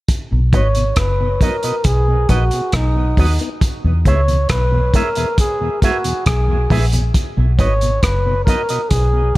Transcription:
0.08 kick, closed hi-hat
0.31 B1 B2
0.53 G#1 F#3 B3 D#4 F#4 B4 C#5 D#5, kick, closed hi-hat
0.75 B2, closed hi-hat
0.96 F#1 B4, kick, cross-stick, closed hi-hat
1.20 B2
1.41 F#3 B3 D#4 F#4 A#4 B4 D#5, kick, closed hi-hat
1.63 B2 F#4 B4 D#5, closed hi-hat
1.84 B1 G#4, kick, closed hi-hat
2.08 B2
2.29 A#1 F#3 B3 D#4 F#4 B4 D#5, kick, closed hi-hat
2.51 B2, closed hi-hat
2.72 B1 D#4, kick, cross-stick, closed hi-hat
2.96 B2, muted clean electric guitar stroke
3.17 D#2 F#3 B3 D#4 F#4 B4 D#5, kick, open hi-hat
3.39 B3 D#4, closed hi-hat
3.61 kick, closed hi-hat
3.84 E2 B2
4.05 C#2 G#3 B3 E4 G#4 B4 C#5 E5, kick, closed hi-hat
4.27 E2 B2, closed hi-hat
4.49 B1 B4, kick, cross-stick, closed hi-hat
4.72 E2 B2
4.94 G#3 B3 E4 G#4 A#4 B4 E5, kick, closed hi-hat
5.15 E2 B2 G#4 B4 E5, closed hi-hat
5.38 G#4, kick, closed hi-hat
5.60 E2 B2
5.82 G#3 B3 E4 F#4 G#4 B4 E5, kick, closed hi-hat
6.04 E2 B2, closed hi-hat
6.26 B1 G#4, kick, cross-stick, closed hi-hat
6.47 E2 B2
6.70 A#1 G#3 B3 E4 G#4 B4 E5, kick, open hi-hat
6.92 E2 B2, muted clean electric guitar stroke, closed hi-hat
7.14 kick, closed hi-hat
7.37 B1 B2
7.59 G#1 F#3 B3 D#4 F#4 B4 C#5 D#5, kick, closed hi-hat
7.81 B2, closed hi-hat
8.03 F#1 B4, kick, cross-stick, closed hi-hat
8.26 B2
8.45 F#3 B3 D#4 F#4 A#4 B4 D#5, kick, closed hi-hat
8.69 B2 F#4 B4 D#5, closed hi-hat
8.89 B1 G#4, kick, closed hi-hat
9.13 B2

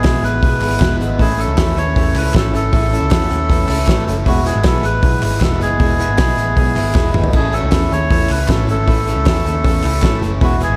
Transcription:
Already playing: E2 E3 G#3 B3 G#4
0.03 B1 E3 G#3 B3 E4 G#4, kick, snare, clap, hi-hat pedal, open hi-hat
0.23 A1 E3 G#3 B3 E4 B4, hi-hat pedal, open hi-hat
0.41 B1 E2 B2 E3 G#3 B3 E4 G#4, kick, hi-hat pedal, open hi-hat
0.60 G#1 E3 G#3 B3 E4, clap, hi-hat pedal, open hi-hat
0.79 E1 E3 G#3 B3 E4 B4, kick, snare, clap, hi-hat pedal, open hi-hat
1.00 G#1 E3 G#3 B3 E4, hi-hat pedal, open hi-hat
1.18 A1 A2 E3 A3 C#4 E4 G#4 A4, kick, hi-hat pedal, open hi-hat
1.37 A3 C#4 E4 A4, hi-hat pedal, open hi-hat
1.41 A3
1.48 C#2
1.57 E2 E3 A3 C#4 E4 B4, kick, snare, clap, hi-hat pedal, open hi-hat
1.76 D#2 A3 C#4 E4 C#5, hi-hat pedal, open hi-hat
1.95 E2 A2 E3 A3 C#4 E4 A4, kick, hi-hat pedal, open hi-hat
2.15 C#2 A3 C#4 E4 B4, clap, hi-hat pedal, open hi-hat
2.33 A1 E3 A3 C#4 E4 A4, kick, snare, clap, hi-hat pedal, open hi-hat
2.37 A4
2.52 G#1 A3 C#4 E4 A4, hi-hat pedal, open hi-hat
2.71 A1 A2 E3 A3 C#4 E4 G#4, kick, hi-hat pedal, open hi-hat
2.91 A3 C#4 E4 A4, hi-hat pedal, open hi-hat
3.01 C#2
3.10 E2 E3 A3 C#4 E4 F#4, kick, snare, clap, hi-hat pedal, open hi-hat
3.29 D#2 A3 C#4 E4, hi-hat pedal, open hi-hat
3.49 E2 A2 E3 A3 C#4 E4 A4, kick, hi-hat pedal, open hi-hat
3.69 C#2 A3 C#4 E4, clap, hi-hat pedal, open hi-hat
3.87 A1 E3 A3 C#4 E4 A4, kick, snare, clap, hi-hat pedal, open hi-hat
4.07 F#1 A3 C#4 E4, hi-hat pedal, open hi-hat
4.25 E1 E2 B2 E3 G#3 B3 E4 F#4 G#4, kick, hi-hat pedal, open hi-hat
4.44 E3 G#3 B3 E4 F#4 G#4, hi-hat pedal, open hi-hat
4.56 G#1
4.64 B1 E3 G#3 B3 E4 G#4 A4, kick, snare, clap, hi-hat pedal, open hi-hat
4.83 A1 E3 G#3 B3 E4 B4, hi-hat pedal, open hi-hat
5.02 B1 E2 B2 E3 G#3 B3 E4 G#4, kick, hi-hat pedal, open hi-hat
5.22 G#1 E3 G#3 B3 E4 B4, clap, hi-hat pedal, open hi-hat
5.40 E1 E3 G#3 B3 E4 A4 B4, kick, snare, clap, hi-hat pedal, open hi-hat
5.60 F#1 E3 G#3 B3 E4 G#4, hi-hat pedal, open hi-hat
5.78 E1 E2 B2 E3 G#3 B3 E4 G#4, kick, hi-hat pedal, open hi-hat
5.98 G#3 B3 E4 G#4, hi-hat pedal, open hi-hat
6.02 E3 G#3
6.09 G#1
6.17 B1 E3 G#3 B3 E4 B4, kick, snare, clap, hi-hat pedal, open hi-hat
6.37 A1 E3 G#3 B3 E4, hi-hat pedal, open hi-hat
6.55 B1 E2 B2 E3 G#3 B3 E4 G#4, kick, hi-hat pedal, open hi-hat
6.76 G#1 E3 G#3 B3 E4, clap, hi-hat pedal, open hi-hat
6.93 E1 E3 G#3 B3 E4 G#4, kick, snare, clap
7.14 G#1 E3 G#3 B3 E4, mid tom
7.24 floor tom
7.32 A1 A2 E3 A3 C#4 E4 G#4 A4, kick, crash
7.51 A3 C#4 E4 F#4 A4, hi-hat pedal, open hi-hat
7.55 A3
7.63 C#2
7.70 E2 E3 A3 C#4 E4 G#4, kick, snare, clap, hi-hat pedal, open hi-hat
7.91 D#2 A3 C#4 E4 C#5, hi-hat pedal, open hi-hat
8.09 E2 A2 E3 A3 C#4 E4 A4, kick, hi-hat pedal, open hi-hat
8.29 C#2 A3 C#4 E4 B4, clap, hi-hat pedal, open hi-hat
8.48 A1 E3 A3 C#4 E4 A4, kick, snare, clap, hi-hat pedal, open hi-hat
8.52 E4
8.68 G#1 A3 C#4 E4 A4, hi-hat pedal, open hi-hat
8.86 A1 A2 E3 A3 C#4 E4 B4, kick, hi-hat pedal, open hi-hat
9.06 A3 C#4 E4 A4, hi-hat pedal, open hi-hat
9.10 A3
9.16 C#2
9.25 E2 E3 A3 C#4 E4 A4, kick, snare, clap, hi-hat pedal, open hi-hat
9.29 E4
9.45 D#2 C#4 E4, hi-hat pedal, open hi-hat
9.49 A3
9.63 E2 A2 E3 A3 C#4 E4 A4, kick, hi-hat pedal, open hi-hat
9.83 C#2 A3 C#4 E4, clap, hi-hat pedal, open hi-hat
10.02 A1 E3 A3 C#4 E4 A4, kick, snare, clap, hi-hat pedal, open hi-hat
10.22 F#1 A3 C#4 E4, hi-hat pedal, open hi-hat
10.41 E1 E2 B2 E3 G#3 B3 E4 F#4 G#4, kick, hi-hat pedal, open hi-hat
10.60 E3 G#3 B3 E4 G#4, hi-hat pedal, open hi-hat
10.70 G#1

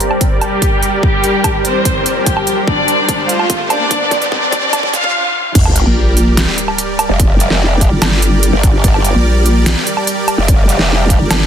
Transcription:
Already playing: G3 G4 A#4 D5, riser
0.00 C4 C5, closed hi-hat
0.11 low woodblock
0.21 kick, closed hi-hat
0.41 G3 G4, closed hi-hat, low woodblock
0.62 kick, closed hi-hat
0.83 closed hi-hat
1.03 G3 G4, kick
1.24 closed hi-hat
1.44 kick, closed hi-hat, low woodblock
1.65 C4 C5, closed hi-hat
1.85 kick, closed hi-hat
2.06 closed hi-hat
2.26 G4 C5 G5, kick, closed hi-hat
2.37 low woodblock
2.47 closed hi-hat
2.67 D4 D5, kick
2.88 closed hi-hat
3.09 kick, closed hi-hat
3.29 F4 F5, closed hi-hat
3.39 low woodblock
3.50 kick, closed hi-hat
3.70 D4 D5, closed hi-hat, low woodblock
3.91 kick, closed hi-hat
4.11 kick, closed hi-hat
4.22 closed hi-hat
4.32 D4 D5, kick
4.52 kick, closed hi-hat
4.73 kick, closed hi-hat, low woodblock
4.83 kick
4.94 F4 F5, kick, closed hi-hat
5.04 kick
5.55 G1 G3 G4 A#4 D5, kick, closed hi-hat, crash, sub drop
5.65 low woodblock
5.76 closed hi-hat
5.86 A#1
6.17 closed hi-hat
6.37 snare, closed hi-hat
6.58 closed hi-hat
6.68 low woodblock
6.78 closed hi-hat
6.99 closed hi-hat, low woodblock
7.09 F1
7.20 kick, closed hi-hat
7.40 closed hi-hat
7.50 snare
7.81 kick, closed hi-hat
7.92 G1
8.02 snare, closed hi-hat, low woodblock
8.22 closed hi-hat
8.43 closed hi-hat
8.53 G1
8.63 kick, closed hi-hat
8.84 G1, kick, closed hi-hat
8.94 low woodblock
9.05 closed hi-hat
9.15 A#1
9.46 closed hi-hat
9.66 snare, closed hi-hat
9.87 closed hi-hat
9.97 low woodblock
10.07 closed hi-hat
10.28 closed hi-hat, low woodblock
10.38 F1
10.48 kick, closed hi-hat
10.69 closed hi-hat
10.79 snare
11.10 kick, closed hi-hat
11.20 G1
11.31 snare, closed hi-hat, low woodblock

